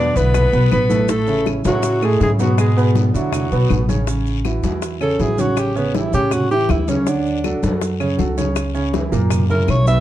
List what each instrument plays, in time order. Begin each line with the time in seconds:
Already playing: tenor saxophone D4, alto saxophone D5
0.16 upright bass B1, grand piano D3 D4 E4, tenor saxophone B3, alto saxophone B4, high bongo, short guiro, maracas
0.34 high bongo, high conga, low conga, long guiro, claves, maracas
0.53 upright bass B1, grand piano B2 B3 B4, high bongo, high conga, maracas
0.71 upright bass A1, tenor saxophone B3, alto saxophone B4, high bongo, low bongo, high conga, short guiro, claves, maracas
0.89 grand piano A2 A3 A4, high bongo, high conga, short guiro, maracas
1.08 grand piano A2 A3 A4, tenor saxophone A3, alto saxophone A4, high bongo, high conga, long guiro, maracas
1.27 grand piano C#3 C#4 E4, high conga, maracas
1.46 high bongo, high conga, short guiro, claves, maracas
1.64 upright bass A2, grand piano C#3 C#4 E4, tenor saxophone F#3, alto saxophone F#4, high bongo, high conga, short guiro, maracas
1.83 high bongo, high conga, long guiro, maracas
2.02 grand piano A2 A3 A4, tenor saxophone G#3, alto saxophone G#4, high bongo, high conga, claves, maracas
2.20 upright bass G#2, grand piano C#3 C#4 E4, tenor saxophone G#3, alto saxophone G#4, high bongo, low bongo, high conga, short guiro, maracas
2.39 grand piano B2 B3 B4, tenor saxophone F#3, alto saxophone F#4, high bongo, high conga, short guiro, maracas
2.58 tenor saxophone G#3, alto saxophone G#4, high bongo, high conga, long guiro, claves, maracas
2.77 grand piano B2 B3 B4, high conga, maracas
2.95 high bongo, high conga, short guiro, maracas
3.14 upright bass E2, grand piano D3 D4 E4, tenor saxophone F#3, alto saxophone F#4, high bongo, short guiro, maracas
3.32 high bongo, high conga, low conga, long guiro, claves, maracas
3.51 upright bass B1, grand piano B2 B3 B4, high bongo, high conga, maracas
3.70 upright bass A1, high bongo, low bongo, high conga, short guiro, claves, maracas
3.89 grand piano C#3 C#4 C#5, high bongo, high conga, short guiro, maracas
4.07 grand piano C#3 C#4 C#5, high bongo, high conga, long guiro, maracas
4.26 high conga, maracas
4.45 grand piano E3 E4 F#4, high bongo, high conga, short guiro, claves, maracas
4.63 upright bass E2, grand piano E3 E4 F#4, high bongo, high conga, short guiro, maracas
4.82 high bongo, high conga, long guiro, maracas
5.00 grand piano C#3 C#4 C#5, alto saxophone A4, high bongo, high conga, claves, maracas
5.19 upright bass A1, grand piano E3 E4 F#4, alto saxophone G#4, high bongo, low bongo, high conga, short guiro, maracas
5.38 grand piano C#3 C#4 C#5, alto saxophone F#4, high bongo, high conga, short guiro, maracas
5.57 alto saxophone G4, high bongo, high conga, long guiro, claves, maracas
5.76 grand piano C#3 C#4 C#5, alto saxophone B3, high conga, maracas
5.94 grand piano E3 E4 G4, alto saxophone E4, high bongo, high conga, short guiro, maracas
6.13 upright bass A2, grand piano C#3 C#4 C#5, alto saxophone G4, high bongo, short guiro, maracas
6.31 alto saxophone F#4, high bongo, high conga, low conga, long guiro, claves, maracas
6.50 grand piano E3 E4 G4, alto saxophone G4, high bongo, high conga, maracas
6.69 upright bass D2, alto saxophone E4, high bongo, low bongo, high conga, short guiro, claves, maracas
6.88 grand piano C#3 C#4 C#5, alto saxophone C#4, high bongo, high conga, short guiro, maracas
7.06 grand piano D3 D4 C#5, alto saxophone D4, high bongo, high conga, long guiro, maracas
7.25 high conga, maracas
7.44 grand piano F#3 F#4 A4, high bongo, high conga, short guiro, claves, maracas
7.63 upright bass F#2, grand piano F#3 F#4 A4, high bongo, high conga, short guiro, maracas
7.81 high bongo, high conga, long guiro, maracas
8.00 grand piano C#3 C#4 C#5, high bongo, claves, maracas
8.18 upright bass C#2, grand piano F#3 F#4 A4, high bongo, low bongo, high conga, short guiro, maracas
8.37 grand piano C#3 C#4 C#5, high bongo, high conga, short guiro, maracas
8.56 high bongo, high conga, long guiro, claves, maracas
8.74 grand piano C#3 C#4 C#5, high conga, maracas
8.93 grand piano E3 E4 G#4, high bongo, high conga, short guiro, maracas
9.12 upright bass F#2, grand piano A#2 A#3 A#4, high bongo, short guiro, maracas
9.30 high bongo, high conga, low conga, long guiro, claves, maracas
9.49 grand piano C#3 C#4 E4, alto saxophone A#4, high bongo, high conga, low conga, maracas
9.68 upright bass B1, alto saxophone C#5, high bongo, low bongo, high conga, short guiro, claves, maracas
9.87 grand piano B2 B3 B4, alto saxophone E5, high bongo, high conga, short guiro, maracas